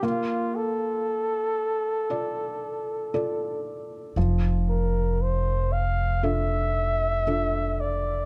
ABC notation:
X:1
M:4/4
L:1/8
Q:1/4=58
K:F
V:1 name="Flugelhorn"
F A6 z | z B c f e3 d |]
V:2 name="Felt piano"
B,4 [FAd]2 [FAd]2 | F,4 [DFA]2 [DFA]2 |]
V:3 name="Upright bass" clef=bass
z8 | F,,,8 |]